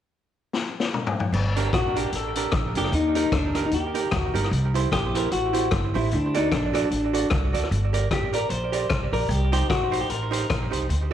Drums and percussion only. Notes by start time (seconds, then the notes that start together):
0.53 snare
0.80 snare
0.94 mid tom
1.07 floor tom
1.20 floor tom
1.33 crash
1.56 closed hi-hat
1.73 kick, cross-stick, closed hi-hat
1.96 closed hi-hat
2.12 closed hi-hat
2.35 closed hi-hat
2.52 kick, cross-stick, closed hi-hat
2.75 closed hi-hat
2.84 cross-stick
2.93 closed hi-hat
3.15 closed hi-hat
3.32 kick, cross-stick, closed hi-hat
3.55 cross-stick, closed hi-hat
3.71 closed hi-hat
3.95 closed hi-hat
4.11 kick, cross-stick, closed hi-hat
4.35 closed hi-hat
4.44 cross-stick
4.53 closed hi-hat
4.75 closed hi-hat
4.92 kick, cross-stick, closed hi-hat
5.15 closed hi-hat
5.31 closed hi-hat
5.54 closed hi-hat
5.71 kick, cross-stick, closed hi-hat
5.95 open hi-hat
6.11 closed hi-hat
6.34 closed hi-hat
6.52 kick, cross-stick, closed hi-hat
6.74 cross-stick, closed hi-hat
6.91 closed hi-hat
7.14 closed hi-hat
7.30 kick, cross-stick, closed hi-hat
7.54 closed hi-hat
7.63 cross-stick
7.72 closed hi-hat
7.94 closed hi-hat
8.11 kick, cross-stick, closed hi-hat
8.33 closed hi-hat
8.50 closed hi-hat
8.73 closed hi-hat
8.90 kick, cross-stick, closed hi-hat
9.13 open hi-hat
9.30 closed hi-hat
9.53 closed hi-hat
9.70 kick, cross-stick, closed hi-hat
9.93 closed hi-hat
10.10 closed hi-hat
10.33 closed hi-hat
10.50 kick, cross-stick, closed hi-hat
10.73 closed hi-hat
10.90 closed hi-hat